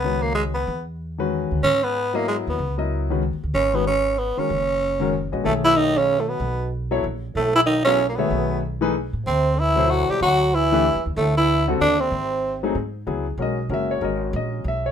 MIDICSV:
0, 0, Header, 1, 6, 480
1, 0, Start_track
1, 0, Tempo, 317797
1, 1021, Time_signature, 3, 2, 24, 8
1, 22532, End_track
2, 0, Start_track
2, 0, Title_t, "Grand piano"
2, 0, Program_c, 0, 0
2, 57, Note_on_c, 0, 51, 49
2, 68, Note_on_c, 0, 56, 44
2, 69, Note_on_c, 0, 61, 46
2, 72, Note_on_c, 0, 66, 44
2, 78, Note_on_c, 0, 71, 54
2, 776, Note_off_c, 0, 51, 0
2, 781, Note_off_c, 0, 56, 0
2, 782, Note_off_c, 0, 61, 0
2, 784, Note_off_c, 0, 66, 0
2, 787, Note_off_c, 0, 71, 0
2, 1787, Note_on_c, 0, 51, 64
2, 1797, Note_on_c, 0, 56, 63
2, 1804, Note_on_c, 0, 61, 62
2, 1809, Note_on_c, 0, 66, 65
2, 1810, Note_on_c, 0, 71, 79
2, 2422, Note_off_c, 0, 51, 0
2, 2427, Note_off_c, 0, 56, 0
2, 2431, Note_off_c, 0, 61, 0
2, 2433, Note_off_c, 0, 66, 0
2, 2434, Note_off_c, 0, 71, 0
2, 3227, Note_on_c, 0, 54, 69
2, 3232, Note_on_c, 0, 59, 64
2, 3241, Note_on_c, 0, 64, 64
2, 3245, Note_on_c, 0, 70, 58
2, 3246, Note_on_c, 0, 75, 82
2, 3863, Note_off_c, 0, 54, 0
2, 3866, Note_off_c, 0, 59, 0
2, 3870, Note_off_c, 0, 64, 0
2, 3872, Note_off_c, 0, 70, 0
2, 3873, Note_off_c, 0, 75, 0
2, 4194, Note_on_c, 0, 59, 60
2, 4196, Note_on_c, 0, 54, 59
2, 4203, Note_on_c, 0, 64, 62
2, 4205, Note_on_c, 0, 70, 57
2, 4208, Note_on_c, 0, 75, 74
2, 4649, Note_off_c, 0, 59, 0
2, 4651, Note_off_c, 0, 54, 0
2, 4654, Note_off_c, 0, 64, 0
2, 4655, Note_off_c, 0, 70, 0
2, 4657, Note_off_c, 0, 75, 0
2, 4685, Note_on_c, 0, 51, 65
2, 4689, Note_on_c, 0, 61, 57
2, 4691, Note_on_c, 0, 56, 59
2, 4695, Note_on_c, 0, 66, 61
2, 4705, Note_on_c, 0, 71, 67
2, 4851, Note_off_c, 0, 51, 0
2, 4853, Note_off_c, 0, 61, 0
2, 4854, Note_off_c, 0, 56, 0
2, 4856, Note_off_c, 0, 66, 0
2, 4860, Note_off_c, 0, 71, 0
2, 5643, Note_on_c, 0, 51, 62
2, 5646, Note_on_c, 0, 56, 58
2, 5647, Note_on_c, 0, 61, 60
2, 5652, Note_on_c, 0, 66, 60
2, 5662, Note_on_c, 0, 71, 72
2, 5810, Note_off_c, 0, 51, 0
2, 5811, Note_off_c, 0, 56, 0
2, 5812, Note_off_c, 0, 61, 0
2, 5814, Note_off_c, 0, 66, 0
2, 5820, Note_off_c, 0, 71, 0
2, 6605, Note_on_c, 0, 51, 54
2, 6610, Note_on_c, 0, 56, 47
2, 6615, Note_on_c, 0, 61, 47
2, 6617, Note_on_c, 0, 66, 49
2, 6624, Note_on_c, 0, 70, 56
2, 6771, Note_off_c, 0, 51, 0
2, 6773, Note_off_c, 0, 56, 0
2, 6776, Note_off_c, 0, 61, 0
2, 6777, Note_off_c, 0, 66, 0
2, 6780, Note_off_c, 0, 70, 0
2, 7549, Note_on_c, 0, 51, 70
2, 7559, Note_on_c, 0, 56, 66
2, 7562, Note_on_c, 0, 61, 65
2, 7565, Note_on_c, 0, 66, 61
2, 7572, Note_on_c, 0, 70, 76
2, 7723, Note_off_c, 0, 51, 0
2, 7727, Note_off_c, 0, 56, 0
2, 7729, Note_off_c, 0, 61, 0
2, 7730, Note_off_c, 0, 66, 0
2, 7734, Note_off_c, 0, 70, 0
2, 8038, Note_on_c, 0, 61, 57
2, 8039, Note_on_c, 0, 56, 57
2, 8043, Note_on_c, 0, 66, 53
2, 8048, Note_on_c, 0, 75, 61
2, 8049, Note_on_c, 0, 71, 53
2, 8207, Note_off_c, 0, 56, 0
2, 8207, Note_off_c, 0, 61, 0
2, 8209, Note_off_c, 0, 66, 0
2, 8209, Note_on_c, 0, 57, 59
2, 8212, Note_off_c, 0, 71, 0
2, 8212, Note_off_c, 0, 75, 0
2, 8216, Note_on_c, 0, 51, 54
2, 8221, Note_on_c, 0, 68, 52
2, 8227, Note_on_c, 0, 73, 50
2, 8233, Note_on_c, 0, 76, 63
2, 9546, Note_off_c, 0, 57, 0
2, 9549, Note_off_c, 0, 51, 0
2, 9552, Note_off_c, 0, 68, 0
2, 9555, Note_off_c, 0, 73, 0
2, 9558, Note_off_c, 0, 76, 0
2, 10436, Note_on_c, 0, 54, 82
2, 10442, Note_on_c, 0, 64, 75
2, 10445, Note_on_c, 0, 59, 70
2, 10446, Note_on_c, 0, 69, 70
2, 10451, Note_on_c, 0, 73, 82
2, 10604, Note_off_c, 0, 54, 0
2, 10608, Note_off_c, 0, 64, 0
2, 10609, Note_off_c, 0, 59, 0
2, 10609, Note_off_c, 0, 69, 0
2, 10612, Note_off_c, 0, 73, 0
2, 11881, Note_on_c, 0, 54, 83
2, 11888, Note_on_c, 0, 64, 69
2, 11891, Note_on_c, 0, 59, 69
2, 11894, Note_on_c, 0, 69, 71
2, 11900, Note_on_c, 0, 73, 87
2, 12047, Note_off_c, 0, 54, 0
2, 12050, Note_off_c, 0, 64, 0
2, 12051, Note_off_c, 0, 59, 0
2, 12053, Note_off_c, 0, 69, 0
2, 12056, Note_off_c, 0, 73, 0
2, 12358, Note_on_c, 0, 51, 66
2, 12359, Note_on_c, 0, 68, 62
2, 12362, Note_on_c, 0, 57, 73
2, 12367, Note_on_c, 0, 73, 73
2, 12374, Note_on_c, 0, 76, 81
2, 12986, Note_off_c, 0, 51, 0
2, 12987, Note_off_c, 0, 68, 0
2, 12988, Note_off_c, 0, 57, 0
2, 12991, Note_off_c, 0, 73, 0
2, 12994, Note_off_c, 0, 76, 0
2, 13305, Note_on_c, 0, 52, 86
2, 13314, Note_on_c, 0, 57, 79
2, 13317, Note_on_c, 0, 68, 76
2, 13320, Note_on_c, 0, 63, 79
2, 13324, Note_on_c, 0, 71, 101
2, 13478, Note_off_c, 0, 52, 0
2, 13483, Note_off_c, 0, 57, 0
2, 13484, Note_off_c, 0, 68, 0
2, 13486, Note_off_c, 0, 63, 0
2, 13488, Note_off_c, 0, 71, 0
2, 14744, Note_on_c, 0, 54, 74
2, 14748, Note_on_c, 0, 47, 70
2, 14753, Note_on_c, 0, 64, 72
2, 14759, Note_on_c, 0, 69, 70
2, 14763, Note_on_c, 0, 72, 83
2, 15379, Note_off_c, 0, 54, 0
2, 15381, Note_off_c, 0, 47, 0
2, 15384, Note_off_c, 0, 64, 0
2, 15386, Note_off_c, 0, 69, 0
2, 15389, Note_off_c, 0, 72, 0
2, 16191, Note_on_c, 0, 52, 83
2, 16199, Note_on_c, 0, 57, 75
2, 16203, Note_on_c, 0, 62, 79
2, 16210, Note_on_c, 0, 67, 74
2, 16213, Note_on_c, 0, 71, 94
2, 16361, Note_off_c, 0, 52, 0
2, 16365, Note_off_c, 0, 57, 0
2, 16367, Note_off_c, 0, 62, 0
2, 16370, Note_off_c, 0, 67, 0
2, 16372, Note_off_c, 0, 71, 0
2, 17634, Note_on_c, 0, 55, 75
2, 17635, Note_on_c, 0, 50, 87
2, 17642, Note_on_c, 0, 60, 75
2, 17646, Note_on_c, 0, 66, 77
2, 17651, Note_on_c, 0, 69, 90
2, 17802, Note_off_c, 0, 55, 0
2, 17803, Note_off_c, 0, 50, 0
2, 17806, Note_off_c, 0, 60, 0
2, 17808, Note_off_c, 0, 66, 0
2, 17811, Note_off_c, 0, 69, 0
2, 19076, Note_on_c, 0, 54, 78
2, 19079, Note_on_c, 0, 57, 69
2, 19086, Note_on_c, 0, 60, 71
2, 19087, Note_on_c, 0, 63, 72
2, 19096, Note_on_c, 0, 68, 82
2, 19243, Note_off_c, 0, 54, 0
2, 19245, Note_off_c, 0, 57, 0
2, 19248, Note_off_c, 0, 60, 0
2, 19249, Note_off_c, 0, 63, 0
2, 19253, Note_off_c, 0, 68, 0
2, 19736, Note_on_c, 0, 59, 59
2, 19737, Note_on_c, 0, 54, 62
2, 19746, Note_on_c, 0, 64, 57
2, 19747, Note_on_c, 0, 68, 70
2, 20005, Note_off_c, 0, 54, 0
2, 20005, Note_off_c, 0, 59, 0
2, 20010, Note_off_c, 0, 64, 0
2, 20010, Note_off_c, 0, 68, 0
2, 20218, Note_on_c, 0, 56, 59
2, 20225, Note_on_c, 0, 61, 54
2, 20230, Note_on_c, 0, 66, 55
2, 20240, Note_on_c, 0, 70, 65
2, 20272, Note_on_c, 0, 75, 81
2, 20486, Note_off_c, 0, 56, 0
2, 20489, Note_off_c, 0, 61, 0
2, 20492, Note_off_c, 0, 66, 0
2, 20497, Note_off_c, 0, 70, 0
2, 20687, Note_on_c, 0, 56, 58
2, 20687, Note_on_c, 0, 61, 56
2, 20694, Note_on_c, 0, 66, 59
2, 20695, Note_off_c, 0, 75, 0
2, 20704, Note_on_c, 0, 70, 74
2, 20747, Note_on_c, 0, 76, 92
2, 21010, Note_on_c, 0, 73, 80
2, 21011, Note_off_c, 0, 76, 0
2, 21146, Note_off_c, 0, 56, 0
2, 21147, Note_off_c, 0, 61, 0
2, 21154, Note_off_c, 0, 66, 0
2, 21156, Note_off_c, 0, 70, 0
2, 21169, Note_on_c, 0, 56, 62
2, 21169, Note_on_c, 0, 61, 55
2, 21177, Note_on_c, 0, 66, 59
2, 21179, Note_on_c, 0, 70, 70
2, 21183, Note_off_c, 0, 73, 0
2, 21212, Note_on_c, 0, 75, 72
2, 21645, Note_off_c, 0, 75, 0
2, 21691, Note_on_c, 0, 75, 79
2, 22124, Note_off_c, 0, 75, 0
2, 22175, Note_on_c, 0, 76, 89
2, 22445, Note_off_c, 0, 76, 0
2, 22445, Note_on_c, 0, 73, 83
2, 22504, Note_off_c, 0, 56, 0
2, 22505, Note_off_c, 0, 61, 0
2, 22508, Note_off_c, 0, 66, 0
2, 22509, Note_off_c, 0, 70, 0
2, 22532, Note_off_c, 0, 73, 0
2, 22532, End_track
3, 0, Start_track
3, 0, Title_t, "Tenor saxophone"
3, 0, Program_c, 1, 66
3, 0, Note_on_c, 1, 59, 90
3, 336, Note_on_c, 1, 58, 84
3, 359, Note_off_c, 1, 59, 0
3, 513, Note_off_c, 1, 58, 0
3, 522, Note_on_c, 1, 56, 75
3, 660, Note_off_c, 1, 56, 0
3, 820, Note_on_c, 1, 59, 75
3, 1275, Note_off_c, 1, 59, 0
3, 2467, Note_on_c, 1, 61, 103
3, 2771, Note_on_c, 1, 59, 91
3, 2793, Note_off_c, 1, 61, 0
3, 3256, Note_on_c, 1, 58, 78
3, 3279, Note_off_c, 1, 59, 0
3, 3434, Note_off_c, 1, 58, 0
3, 3444, Note_on_c, 1, 56, 74
3, 3573, Note_off_c, 1, 56, 0
3, 3761, Note_on_c, 1, 59, 71
3, 4190, Note_off_c, 1, 59, 0
3, 5357, Note_on_c, 1, 61, 101
3, 5660, Note_on_c, 1, 59, 85
3, 5682, Note_off_c, 1, 61, 0
3, 5837, Note_off_c, 1, 59, 0
3, 5851, Note_on_c, 1, 61, 94
3, 6315, Note_on_c, 1, 59, 84
3, 6337, Note_off_c, 1, 61, 0
3, 6624, Note_on_c, 1, 61, 87
3, 6647, Note_off_c, 1, 59, 0
3, 8053, Note_off_c, 1, 61, 0
3, 8232, Note_on_c, 1, 57, 96
3, 8364, Note_off_c, 1, 57, 0
3, 8531, Note_on_c, 1, 64, 103
3, 8709, Note_on_c, 1, 63, 103
3, 8732, Note_off_c, 1, 64, 0
3, 9028, Note_on_c, 1, 61, 100
3, 9050, Note_off_c, 1, 63, 0
3, 9367, Note_on_c, 1, 57, 58
3, 9390, Note_off_c, 1, 61, 0
3, 9499, Note_on_c, 1, 59, 83
3, 9522, Note_off_c, 1, 57, 0
3, 10155, Note_off_c, 1, 59, 0
3, 11128, Note_on_c, 1, 57, 94
3, 11392, Note_off_c, 1, 57, 0
3, 11412, Note_on_c, 1, 64, 107
3, 11492, Note_off_c, 1, 64, 0
3, 11573, Note_on_c, 1, 63, 92
3, 11843, Note_off_c, 1, 63, 0
3, 11852, Note_on_c, 1, 61, 98
3, 12190, Note_off_c, 1, 61, 0
3, 12224, Note_on_c, 1, 58, 60
3, 12319, Note_on_c, 1, 59, 78
3, 12341, Note_off_c, 1, 58, 0
3, 13004, Note_off_c, 1, 59, 0
3, 13998, Note_on_c, 1, 60, 93
3, 14490, Note_on_c, 1, 64, 102
3, 14512, Note_off_c, 1, 60, 0
3, 14954, Note_on_c, 1, 66, 103
3, 14977, Note_off_c, 1, 64, 0
3, 15258, Note_on_c, 1, 67, 96
3, 15281, Note_off_c, 1, 66, 0
3, 15433, Note_off_c, 1, 67, 0
3, 15446, Note_on_c, 1, 66, 115
3, 15927, Note_on_c, 1, 64, 102
3, 15949, Note_off_c, 1, 66, 0
3, 16690, Note_off_c, 1, 64, 0
3, 16875, Note_on_c, 1, 57, 93
3, 17144, Note_off_c, 1, 57, 0
3, 17177, Note_on_c, 1, 64, 98
3, 17614, Note_off_c, 1, 64, 0
3, 17841, Note_on_c, 1, 62, 91
3, 18128, Note_on_c, 1, 60, 82
3, 18151, Note_off_c, 1, 62, 0
3, 19083, Note_off_c, 1, 60, 0
3, 22532, End_track
4, 0, Start_track
4, 0, Title_t, "Trombone"
4, 0, Program_c, 2, 57
4, 8234, Note_on_c, 2, 45, 79
4, 8365, Note_off_c, 2, 45, 0
4, 8518, Note_on_c, 2, 52, 80
4, 8708, Note_on_c, 2, 51, 87
4, 8731, Note_off_c, 2, 52, 0
4, 9004, Note_on_c, 2, 49, 78
4, 9027, Note_off_c, 2, 51, 0
4, 9357, Note_on_c, 2, 45, 47
4, 9380, Note_off_c, 2, 49, 0
4, 9497, Note_on_c, 2, 47, 63
4, 9520, Note_off_c, 2, 45, 0
4, 10153, Note_off_c, 2, 47, 0
4, 11106, Note_on_c, 2, 45, 78
4, 11380, Note_off_c, 2, 45, 0
4, 11394, Note_on_c, 2, 52, 89
4, 11478, Note_off_c, 2, 52, 0
4, 11565, Note_on_c, 2, 51, 86
4, 11848, Note_off_c, 2, 51, 0
4, 11860, Note_on_c, 2, 49, 70
4, 12194, Note_off_c, 2, 49, 0
4, 12240, Note_on_c, 2, 46, 48
4, 12329, Note_on_c, 2, 47, 66
4, 12352, Note_off_c, 2, 46, 0
4, 13009, Note_off_c, 2, 47, 0
4, 13986, Note_on_c, 2, 48, 78
4, 14477, Note_on_c, 2, 52, 85
4, 14499, Note_off_c, 2, 48, 0
4, 14956, Note_on_c, 2, 54, 78
4, 14979, Note_off_c, 2, 52, 0
4, 15256, Note_on_c, 2, 55, 83
4, 15279, Note_off_c, 2, 54, 0
4, 15411, Note_off_c, 2, 55, 0
4, 15420, Note_on_c, 2, 54, 94
4, 15920, Note_on_c, 2, 52, 91
4, 15943, Note_off_c, 2, 54, 0
4, 16687, Note_off_c, 2, 52, 0
4, 16876, Note_on_c, 2, 45, 79
4, 17144, Note_off_c, 2, 45, 0
4, 17168, Note_on_c, 2, 52, 83
4, 17610, Note_off_c, 2, 52, 0
4, 17833, Note_on_c, 2, 50, 74
4, 18121, Note_on_c, 2, 48, 69
4, 18144, Note_off_c, 2, 50, 0
4, 19079, Note_off_c, 2, 48, 0
4, 22532, End_track
5, 0, Start_track
5, 0, Title_t, "Upright bass"
5, 0, Program_c, 3, 32
5, 0, Note_on_c, 3, 37, 75
5, 961, Note_off_c, 3, 37, 0
5, 1012, Note_on_c, 3, 40, 85
5, 2215, Note_off_c, 3, 40, 0
5, 2283, Note_on_c, 3, 38, 66
5, 2453, Note_off_c, 3, 38, 0
5, 2463, Note_on_c, 3, 44, 78
5, 3661, Note_off_c, 3, 44, 0
5, 3730, Note_on_c, 3, 39, 68
5, 3898, Note_off_c, 3, 39, 0
5, 3907, Note_on_c, 3, 37, 88
5, 4968, Note_off_c, 3, 37, 0
5, 5029, Note_on_c, 3, 39, 58
5, 5178, Note_off_c, 3, 39, 0
5, 5188, Note_on_c, 3, 38, 70
5, 5334, Note_off_c, 3, 38, 0
5, 5343, Note_on_c, 3, 32, 82
5, 6541, Note_off_c, 3, 32, 0
5, 6796, Note_on_c, 3, 30, 88
5, 7987, Note_off_c, 3, 30, 0
5, 8049, Note_on_c, 3, 34, 64
5, 8218, Note_off_c, 3, 34, 0
5, 8244, Note_on_c, 3, 35, 83
5, 9614, Note_off_c, 3, 35, 0
5, 9663, Note_on_c, 3, 35, 90
5, 10563, Note_off_c, 3, 35, 0
5, 10630, Note_on_c, 3, 34, 76
5, 11074, Note_off_c, 3, 34, 0
5, 11102, Note_on_c, 3, 35, 86
5, 12482, Note_off_c, 3, 35, 0
5, 12544, Note_on_c, 3, 35, 80
5, 13739, Note_off_c, 3, 35, 0
5, 13793, Note_on_c, 3, 45, 66
5, 13968, Note_off_c, 3, 45, 0
5, 13986, Note_on_c, 3, 38, 87
5, 15180, Note_off_c, 3, 38, 0
5, 15420, Note_on_c, 3, 38, 85
5, 16481, Note_off_c, 3, 38, 0
5, 16542, Note_on_c, 3, 40, 68
5, 16691, Note_off_c, 3, 40, 0
5, 16703, Note_on_c, 3, 39, 69
5, 16852, Note_off_c, 3, 39, 0
5, 16861, Note_on_c, 3, 38, 91
5, 17762, Note_off_c, 3, 38, 0
5, 17826, Note_on_c, 3, 39, 74
5, 18271, Note_off_c, 3, 39, 0
5, 18297, Note_on_c, 3, 32, 87
5, 19199, Note_off_c, 3, 32, 0
5, 19253, Note_on_c, 3, 44, 75
5, 19704, Note_off_c, 3, 44, 0
5, 19739, Note_on_c, 3, 37, 79
5, 20193, Note_off_c, 3, 37, 0
5, 20202, Note_on_c, 3, 35, 83
5, 20677, Note_off_c, 3, 35, 0
5, 20684, Note_on_c, 3, 30, 85
5, 21154, Note_off_c, 3, 30, 0
5, 21163, Note_on_c, 3, 32, 83
5, 21638, Note_off_c, 3, 32, 0
5, 21646, Note_on_c, 3, 34, 97
5, 22109, Note_off_c, 3, 34, 0
5, 22118, Note_on_c, 3, 35, 85
5, 22532, Note_off_c, 3, 35, 0
5, 22532, End_track
6, 0, Start_track
6, 0, Title_t, "Muted upright bass strokes"
6, 6608, Note_on_c, 9, 29, 41
6, 6759, Note_off_c, 9, 29, 0
6, 15241, Note_on_c, 9, 29, 37
6, 15392, Note_off_c, 9, 29, 0
6, 22532, End_track
0, 0, End_of_file